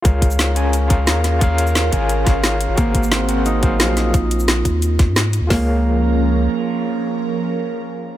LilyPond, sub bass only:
\new Staff \with { instrumentName = "Sub bass" } { \clef bass \time 4/4 \key des \major \tempo 4 = 176 des,2. ees,4~ | ees,4. aes,,4~ aes,,16 aes,,4 aes,,16 | aes,,2. bes,,4~ | bes,,4. ees,4~ ees,16 aes,4 ees,16 |
des,2. r4 | r1 | }